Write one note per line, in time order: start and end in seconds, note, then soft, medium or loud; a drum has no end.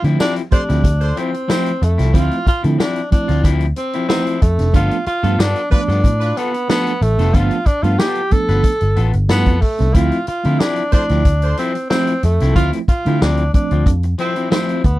0.02 0.17 D3 loud
0.02 0.17 F3 medium
0.02 0.18 A3 medium
0.02 0.18 C4 medium
0.02 0.19 C4 medium
0.02 0.18 E4 medium
0.02 0.19 E4 medium
0.02 closed hi-hat soft
0.07 0.18 F3 medium
0.20 0.40 F3 medium
0.20 0.41 C4 medium
0.20 0.35 D4 loud
0.20 0.41 E4 medium
0.20 snare loud
0.20 tambourine loud
0.35 0.43 C4 soft
0.35 0.44 G4 soft
0.35 closed hi-hat soft
0.51 0.90 F3 medium
0.51 0.90 A3 medium
0.51 0.90 C4 medium
0.51 1.19 D4 medium
0.51 0.62 F4 loud
0.51 0.90 G4 medium
0.51 0.63 A4 loud
0.51 0.62 C5 loud
0.51 muted clean electric guitar stroke soft
0.51 muted picked electric bass stroke medium
0.51 kick medium
0.51 closed hi-hat medium
0.69 0.82 D2 loud
0.69 0.82 F3 medium
0.69 0.83 C4 medium
0.69 0.84 E4 medium
0.69 snare soft
0.69 closed hi-hat medium
0.84 1.11 D2 loud
0.84 muted clean electric guitar stroke soft
0.84 kick medium
0.84 closed hi-hat medium
1.01 1.22 F4 medium
1.01 1.22 A4 loud
1.01 1.22 C5 loud
1.01 closed hi-hat medium
1.16 1.33 F3 medium
1.16 1.33 C4 medium
1.16 1.50 C4 medium
1.16 1.32 E4 medium
1.16 closed hi-hat medium
1.33 1.41 C4 soft
1.33 1.42 E4 soft
1.33 muted clean electric guitar stroke medium
1.33 closed hi-hat medium
1.48 1.72 F3 medium
1.48 1.70 F3 loud
1.48 1.72 A3 medium
1.48 1.73 C4 medium
1.48 1.70 C4 loud
1.48 1.85 C4 loud
1.48 1.73 E4 medium
1.48 1.71 E4 loud
1.48 snare loud
1.48 tambourine loud
1.66 closed hi-hat medium
1.82 1.96 F2 medium
1.82 2.16 A3 medium
1.82 muted clean electric guitar stroke soft
1.82 closed hi-hat medium
1.98 2.12 C2 loud
1.98 2.12 F3 soft
1.98 2.06 C4 loud
1.98 2.13 C4 medium
1.98 2.13 E4 medium
1.98 2.07 E4 medium
1.98 snare soft
1.98 closed hi-hat medium
2.13 2.29 D2 loud
2.13 2.35 F3 medium
2.13 2.37 F3 medium
2.13 2.38 A3 medium
2.13 2.35 C4 medium
2.13 2.38 C4 medium
2.13 2.35 E4 medium
2.13 2.38 E4 loud
2.13 2.47 F4 loud
2.13 kick medium
2.13 closed hi-hat medium
2.31 closed hi-hat medium
2.45 2.62 F4 loud
2.45 muted clean electric guitar stroke soft
2.45 muted picked electric bass stroke soft
2.45 kick loud
2.45 closed hi-hat medium
2.63 2.77 D3 loud
2.63 2.78 F3 medium
2.63 2.77 F3 medium
2.63 2.78 A3 medium
2.63 2.78 C4 medium
2.63 2.79 C4 medium
2.63 2.78 E4 medium
2.63 2.79 E4 medium
2.63 closed hi-hat soft
2.78 3.00 F3 medium
2.78 3.00 C4 medium
2.78 3.10 D4 loud
2.78 3.01 E4 medium
2.78 snare loud
2.78 tambourine loud
2.96 3.03 C4 soft
2.96 3.04 E4 soft
2.96 closed hi-hat soft
3.11 3.50 F3 medium
3.11 3.50 A3 medium
3.11 3.50 C4 medium
3.11 3.48 D4 loud
3.11 3.51 E4 medium
3.11 muted clean electric guitar stroke soft
3.11 muted picked electric bass stroke soft
3.11 kick loud
3.11 closed hi-hat medium
3.28 3.42 D2 medium
3.28 3.42 F3 medium
3.28 3.43 C4 medium
3.28 3.43 F4 medium
3.28 snare soft
3.28 closed hi-hat soft
3.43 3.71 D2 loud
3.43 3.65 F3 medium
3.43 3.65 C4 medium
3.43 3.66 E4 medium
3.43 kick medium
3.43 closed hi-hat medium
3.60 closed hi-hat medium
3.76 4.07 C4 medium
3.76 muted clean electric guitar stroke soft
3.76 closed hi-hat medium
3.93 4.08 F3 medium
3.93 4.01 C4 soft
3.93 4.09 C4 medium
3.93 4.09 E4 medium
3.93 4.02 E4 soft
3.93 closed hi-hat medium
4.08 4.22 E3 medium
4.08 4.32 F3 medium
4.08 4.33 A3 medium
4.08 4.22 B3 medium
4.08 4.43 C4 loud
4.08 4.33 C4 medium
4.08 4.23 D#4 loud
4.08 4.33 E4 medium
4.08 snare loud
4.08 tambourine loud
4.22 4.39 F3 medium
4.22 4.40 C4 medium
4.22 4.40 E4 loud
4.26 closed hi-hat medium
4.42 4.57 F2 loud
4.42 4.74 A3 medium
4.42 kick medium
4.42 closed hi-hat medium
4.58 4.72 F1 medium
4.58 4.66 C4 medium
4.58 4.66 D4 loud
4.58 muted clean electric guitar stroke soft
4.58 snare soft
4.58 closed hi-hat medium
4.72 4.89 G1 loud
4.72 4.97 F3 medium
4.72 4.97 A3 medium
4.72 4.98 B3 medium
4.72 4.95 B3 medium
4.72 4.98 D4 loud
4.72 4.96 F4 medium
4.72 5.05 F4 loud
4.72 4.96 A4 medium
4.72 kick loud
4.72 closed hi-hat loud
4.91 closed hi-hat soft
5.06 5.41 F4 loud
5.06 muted clean electric guitar stroke soft
5.06 muted picked electric bass stroke soft
5.06 closed hi-hat medium
5.23 5.37 G2 loud
5.23 5.38 F3 medium
5.23 5.38 A3 medium
5.23 5.38 B3 medium
5.23 5.37 B3 medium
5.23 5.38 F4 medium
5.23 5.39 F4 medium
5.23 5.39 A4 medium
5.23 closed hi-hat medium
5.38 5.53 G2 medium
5.38 5.60 B3 medium
5.38 5.71 D4 loud
5.38 5.60 F4 medium
5.38 5.61 A4 loud
5.38 snare loud
5.38 tambourine loud
5.55 5.63 B3 soft
5.55 5.64 D4 soft
5.55 closed hi-hat soft
5.70 6.10 F3 medium
5.70 6.10 A3 medium
5.70 6.10 B3 medium
5.70 5.82 D4 loud
5.70 6.39 D4 loud
5.70 6.10 D4 medium
5.70 5.82 F4 medium
5.70 5.83 B4 loud
5.70 muted clean electric guitar stroke soft
5.70 muted picked electric bass stroke medium
5.70 kick loud
5.70 closed hi-hat medium
5.88 6.02 G2 loud
5.88 6.03 B3 medium
5.88 6.04 F4 medium
5.88 6.04 A4 medium
5.88 snare soft
5.88 closed hi-hat soft
6.04 6.32 A2 loud
6.04 muted clean electric guitar stroke soft
6.04 kick medium
6.04 closed hi-hat medium
6.20 6.42 D4 medium
6.20 6.42 F4 medium
6.20 6.41 B4 medium
6.20 closed hi-hat soft
6.37 6.69 B3 loud
6.37 6.54 B3 medium
6.37 6.54 F4 medium
6.37 6.53 A4 medium
6.37 closed hi-hat medium
6.52 6.61 B3 soft
6.52 6.61 D4 soft
6.52 muted clean electric guitar stroke soft
6.52 closed hi-hat medium
6.68 6.92 F3 medium
6.68 6.92 A3 medium
6.68 6.93 B3 medium
6.68 7.04 B3 loud
6.68 6.91 B3 medium
6.68 6.93 D4 medium
6.68 6.91 F4 medium
6.68 6.92 A4 loud
6.68 snare loud
6.68 tambourine loud
6.87 closed hi-hat soft
7.02 7.16 A1 medium
7.02 7.36 A3 loud
7.02 muted clean electric guitar stroke soft
7.02 closed hi-hat medium
7.18 7.32 F1 medium
7.18 7.26 B3 loud
7.18 7.33 B3 medium
7.18 7.27 D4 medium
7.18 7.34 F4 medium
7.18 7.34 A4 medium
7.18 snare soft
7.18 closed hi-hat medium
7.33 7.49 G1 medium
7.33 7.57 F3 loud
7.33 7.58 A3 medium
7.33 7.58 B3 medium
7.33 7.56 B3 medium
7.33 7.58 D4 loud
7.33 7.68 F4 loud
7.33 7.56 F4 medium
7.33 7.57 A4 medium
7.33 kick medium
7.33 closed hi-hat medium
7.51 closed hi-hat medium
7.66 7.85 D4 loud
7.66 muted picked electric bass stroke soft
7.66 muted clean electric guitar stroke soft
7.66 kick medium
7.66 closed hi-hat medium
7.83 7.97 G2 loud
7.83 7.98 F3 medium
7.83 7.99 A3 medium
7.83 7.99 B3 medium
7.83 7.97 B3 soft
7.83 7.99 D4 medium
7.83 8.00 F4 loud
7.83 7.98 F4 medium
7.83 7.99 A4 medium
7.83 closed hi-hat medium
7.98 8.20 B3 medium
7.98 8.21 F4 medium
7.98 8.34 G4 loud
7.98 8.21 A4 medium
7.98 snare loud
7.98 tambourine loud
8.15 8.24 B3 soft
8.15 8.25 E4 soft
8.15 closed hi-hat soft
8.31 8.70 F3 medium
8.31 8.70 A3 medium
8.31 8.71 B3 medium
8.31 8.71 D4 medium
8.31 9.03 A4 loud
8.31 muted clean electric guitar stroke soft
8.31 muted picked electric bass stroke medium
8.31 kick medium
8.31 closed hi-hat medium
8.49 8.62 G1 medium
8.49 8.63 B3 medium
8.49 8.64 F4 medium
8.49 8.64 B4 medium
8.49 snare soft
8.49 closed hi-hat soft
8.64 muted clean electric guitar stroke soft
8.64 kick medium
8.64 closed hi-hat medium
8.80 8.95 G1 medium
8.80 closed hi-hat medium
8.96 9.12 A1 medium
8.96 9.14 B3 medium
8.96 9.14 F4 medium
8.96 9.13 A4 medium
8.96 closed hi-hat medium
9.13 9.27 G1 medium
9.13 9.22 B3 soft
9.13 9.22 D4 soft
9.13 muted clean electric guitar stroke medium
9.13 closed hi-hat soft
9.28 9.44 G2 loud
9.28 9.53 F3 medium
9.28 9.53 A3 medium
9.28 9.60 B3 medium
9.28 9.53 B3 medium
9.28 9.63 B3 loud
9.28 9.53 E4 medium
9.28 9.60 F4 medium
9.28 9.60 A4 loud
9.28 snare loud
9.28 tambourine loud
9.46 9.60 F2 medium
9.46 kick medium
9.46 closed hi-hat medium
9.61 9.95 A3 medium
9.61 muted clean electric guitar stroke soft
9.61 kick medium
9.61 open hi-hat medium
9.78 9.93 C2 medium
9.78 9.86 B3 medium
9.78 9.87 D4 medium
9.78 muted clean electric guitar stroke soft
9.78 snare soft
9.78 closed hi-hat medium
9.94 10.09 D2 loud
9.94 10.18 F3 medium
9.94 10.16 F3 medium
9.94 10.18 A3 medium
9.94 10.19 C4 medium
9.94 10.16 C4 medium
9.94 10.19 E4 loud
9.94 10.17 E4 loud
9.94 10.27 F4 loud
9.94 kick loud
9.94 closed hi-hat medium
10.12 closed hi-hat soft
10.27 10.61 F4 loud
10.27 muted clean electric guitar stroke soft
10.27 muted picked electric bass stroke soft
10.27 closed hi-hat medium
10.43 10.58 D3 loud
10.43 10.59 F3 medium
10.43 10.59 A3 medium
10.43 10.59 C4 medium
10.43 10.60 C4 medium
10.43 10.59 D4 medium
10.43 10.60 E4 medium
10.43 closed hi-hat soft
10.60 10.81 F3 medium
10.60 10.82 C4 medium
10.60 10.93 D4 loud
10.60 10.82 E4 loud
10.60 snare loud
10.60 tambourine loud
10.76 10.84 C4 soft
10.76 10.85 E4 soft
10.76 closed hi-hat soft
10.92 11.31 F3 medium
10.92 11.31 A3 medium
10.92 11.31 C4 medium
10.92 11.54 D4 loud
10.92 11.32 E4 medium
10.92 11.03 F4 loud
10.92 11.03 A4 loud
10.92 11.03 C5 loud
10.92 muted picked electric bass stroke medium
10.92 muted clean electric guitar stroke soft
10.92 kick loud
10.92 closed hi-hat medium
11.09 11.23 D2 loud
11.09 11.24 F3 medium
11.09 11.25 C4 medium
11.09 11.25 E4 medium
11.09 snare soft
11.09 closed hi-hat soft
11.25 11.53 D2 loud
11.25 muted clean electric guitar stroke soft
11.25 kick medium
11.25 closed hi-hat medium
11.42 11.64 F4 medium
11.42 11.64 A4 medium
11.42 11.64 C5 medium
11.42 closed hi-hat medium
11.57 11.75 F3 medium
11.57 11.89 C4 medium
11.57 11.75 C4 medium
11.57 11.74 E4 medium
11.57 closed hi-hat medium
11.74 11.82 C4 soft
11.74 11.83 E4 soft
11.74 muted clean electric guitar stroke soft
11.74 closed hi-hat medium
11.90 12.14 F3 medium
11.90 12.12 F3 loud
11.90 12.14 A3 medium
11.90 12.21 C4 loud
11.90 12.14 C4 medium
11.90 12.12 C4 medium
11.90 12.15 E4 medium
11.90 12.12 E4 loud
11.90 snare loud
11.90 tambourine loud
12.07 closed hi-hat medium
12.23 12.38 F2 medium
12.23 12.54 A3 medium
12.23 muted clean electric guitar stroke soft
12.23 closed hi-hat medium
12.40 12.54 C2 loud
12.40 12.56 F3 medium
12.40 12.47 C4 medium
12.40 12.56 C4 medium
12.40 12.48 D4 loud
12.40 12.56 E4 medium
12.40 snare soft
12.40 closed hi-hat medium
12.56 12.70 D2 medium
12.56 12.79 F3 loud
12.56 12.77 F3 medium
12.56 12.79 A3 medium
12.56 12.80 C4 medium
12.56 12.78 C4 medium
12.56 12.80 E4 loud
12.56 12.78 E4 medium
12.56 12.70 F4 loud
12.56 kick loud
12.56 closed hi-hat medium
12.73 closed hi-hat medium
12.88 13.24 F4 loud
12.88 muted picked electric bass stroke soft
12.88 muted clean electric guitar stroke soft
12.88 kick medium
12.88 closed hi-hat medium
13.05 13.19 D3 medium
13.05 13.20 F3 medium
13.05 13.21 F3 medium
13.05 13.20 A3 medium
13.05 13.20 C4 medium
13.05 13.21 C4 medium
13.05 13.21 E4 medium
13.05 closed hi-hat soft
13.22 13.49 D2 medium
13.22 13.42 F3 medium
13.22 13.43 C4 loud
13.22 13.54 D4 loud
13.22 13.43 E4 medium
13.22 snare loud
13.22 tambourine medium
13.37 13.45 C4 soft
13.37 13.46 E4 soft
13.37 closed hi-hat soft
13.53 13.92 F3 medium
13.53 13.92 A3 medium
13.53 13.92 C4 medium
13.53 13.90 D4 medium
13.53 13.93 D4 medium
13.53 muted clean electric guitar stroke soft
13.53 kick loud
13.53 closed hi-hat medium
13.71 13.84 D2 medium
13.71 13.85 F3 medium
13.71 13.86 C4 medium
13.71 13.86 F4 medium
13.71 closed hi-hat soft
13.86 14.14 F2 loud
13.86 muted clean electric guitar stroke soft
13.86 kick loud
13.86 closed hi-hat medium
14.03 muted clean electric guitar stroke medium
14.03 closed hi-hat medium
14.18 14.35 F3 medium
14.18 14.36 C4 medium
14.18 14.50 C4 loud
14.18 14.35 E4 medium
14.18 closed hi-hat medium
14.36 14.49 F3 medium
14.36 14.44 C4 soft
14.36 14.50 C4 medium
14.36 14.44 D4 soft
14.36 14.51 E4 medium
14.36 closed hi-hat medium
14.50 14.81 F3 loud
14.50 14.75 F3 medium
14.50 14.75 A3 medium
14.50 14.87 C4 loud
14.50 14.82 C4 loud
14.50 14.75 C4 medium
14.50 14.82 E4 loud
14.50 14.76 E4 medium
14.50 snare loud
14.50 tambourine medium
14.69 closed hi-hat medium
14.84 14.99 D2 medium
14.84 14.99 B3 medium
14.84 muted clean electric guitar stroke soft
14.84 kick loud
14.84 closed hi-hat medium